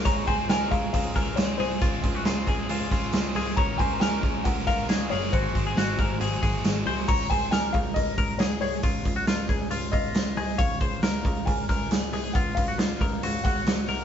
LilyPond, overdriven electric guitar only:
\new Staff \with { instrumentName = "Overdriven electric guitar" } { \time 4/4 \key des \major \tempo 4 = 137 <des aes c' f' aes'>8 <c' f' aes'>8 <des aes c' f' aes'>8 <c' f' aes'>8 <aes c' f' aes'>8 <c' f' aes'>8 <des aes c' f' aes'>8 <c' f' aes'>8 | <des aes c' f' aes'>8 <c' f' aes'>8 <des aes c' f' aes'>8 <c' f' aes'>8 <aes c' f' aes'>8 <c' f' aes'>8 <des aes c' f' aes'>8 <c' f' aes'>8 | <des ges des' f' bes'>8 <des' f' bes'>8 <des ges des' f' bes'>8 <des' f' bes'>8 <ges des' f' bes'>8 <des' f' bes'>8 <des ges des' f' bes'>8 <des' f' bes'>8 | <aes, ees ges c' ges' aes'>8 <ges c' ges' aes'>8 <aes, ees ges c' ges' aes'>8 <ges c' ges' aes'>8 <ges c' ges' aes'>8 <ges c' ges' aes'>8 <aes, ees ges c' ges' aes'>8 <ges c' ges' aes'>8 |
r1 | r1 | r1 | r1 | }